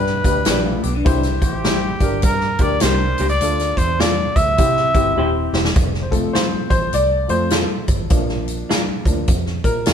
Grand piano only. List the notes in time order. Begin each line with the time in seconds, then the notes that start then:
Already playing: D4 G4 B4
0.24 D4 G4 B4
0.46 D4 G4 B4
1.05 E4 G4 C5
2.00 D4 G4 A#4
2.60 D4 G4 A#4
2.81 D4 G4 A#4
3.42 D4 F4 A4
4.57 C4 E4 G4
4.94 C4 E4 G4
5.16 C4 E4 G4
6.03 C5
6.11 F3 A3 C4 A4
6.33 C5
6.70 C5
6.94 D5
7.28 F3 A3 C4 C5
7.53 A4
8.10 F3 A#3 D4
9.06 F3 A#3 D4
9.64 A#4